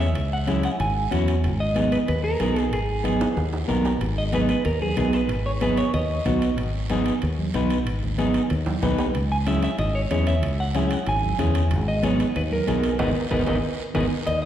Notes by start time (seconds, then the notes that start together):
Already playing: E2
0.00 E5, short guiro
0.15 C#2, high timbale, long guiro
0.33 F#5
0.47 C#4 E4 G#4 E5, high conga, high timbale, short guiro
0.63 F#5, high timbale, short guiro
0.80 G#1 G#5, high timbale, long guiro
1.11 E2 C#4 E4 F#4, high conga, high timbale, short guiro
1.28 high timbale, short guiro
1.44 G#1, high timbale, long guiro
1.60 D#5
1.75 B3 D#4 G#4, high conga, high timbale, short guiro
1.92 B4, high timbale, short guiro
2.08 D#2 B4, high timbale, long guiro
2.24 A#4
2.40 B1 B3 D#4 G#4, high conga, high timbale, short guiro
2.56 high timbale, short guiro
2.72 G#1 G#4, high timbale, long guiro
3.04 B3 D#4 G#4, high conga, high timbale, short guiro
3.21 high timbale, short guiro
3.37 D#2, high timbale, long guiro
3.53 high timbale
3.68 B1 B3 D#4 A#4, high conga, low timbale, short guiro
3.85 low timbale, short guiro
4.01 G#1, high timbale, long guiro
4.18 D#5
4.32 B3 D#4 G#4 B4, high conga, high timbale, short guiro
4.49 B4, high timbale, short guiro
4.65 D#2 A#4, high timbale, long guiro
4.81 G#4, high conga
4.97 B1 B3 D#4 G#4, high conga, high timbale, short guiro
5.13 B4, high timbale, short guiro
5.29 G#1, high timbale, long guiro
5.46 C#5
5.61 B3 D#4 G#4 B4, high conga, high timbale, short guiro
5.77 C#5, high timbale, short guiro
5.94 D#2 D#5, high timbale, long guiro
6.25 B1 B3 D#4 F#4, high conga, low conga, high timbale, short guiro
6.42 high timbale, short guiro
6.58 G#1, high timbale, long guiro
6.90 B3 D#4 G#4, high conga, high timbale, short guiro
7.06 high timbale, short guiro
7.22 D#2, high timbale, long guiro
7.39 high conga
7.54 B1 B3 D#4 B4, high conga, high timbale, short guiro
7.70 high timbale, short guiro
7.87 G#1, high timbale, long guiro
8.03 low conga
8.18 B3 D#4 G#4, high conga, high timbale, short guiro
8.34 high timbale, short guiro
8.50 D#2, high timbale, long guiro
8.66 high conga, high timbale
8.82 B1 B3 D#4 B4, high conga, low conga, low timbale, short guiro
8.98 low timbale, short guiro
9.15 C#2, high timbale, long guiro
9.32 G#5
9.47 C#4 E4 G#4 E5, high conga, high timbale, short guiro
9.63 E5, high timbale, short guiro
9.78 G#1 D#5, high timbale, long guiro
9.95 C#5
10.11 E2 C#4 E4 G#4 C#5, high conga, high timbale, short guiro
10.27 E5, high timbale, short guiro
10.43 C#2, high timbale, long guiro
10.60 F#5
10.75 C#4 E4 G#4 E5, high conga, high timbale, short guiro
10.91 F#5, high timbale, short guiro
11.07 G#1 G#5, high timbale, long guiro
11.22 high conga
11.38 E2 C#4 E4 G#4, high conga, low conga, high timbale, short guiro
11.55 high timbale, short guiro
11.71 G#1, high timbale, long guiro
11.88 D#5
12.03 B3 D#4 G#4 C#5, high conga, high timbale, short guiro
12.20 B4, high timbale, short guiro
12.36 D#2 B4, high timbale, long guiro
12.52 A#4, high conga
12.67 B1 B3 D#4 G#4, high conga, high timbale, short guiro
12.83 high timbale, short guiro
12.99 G#1 B3 D#4 G#4 A#4 B4 D#5, low conga, high timbale, long guiro
13.31 G#1 B3 D#4 G#4 A#4 B4 D#5, low conga, high timbale, long guiro
13.46 G#1 B3 D#4 G#4 A#4 B4 D#5, low conga, high timbale, long guiro
13.95 G#1 B3 D#4 G#4 A#4 B4 D#5, low conga, high timbale, long guiro
14.27 D#2 D#5, cowbell, long guiro
14.42 D#5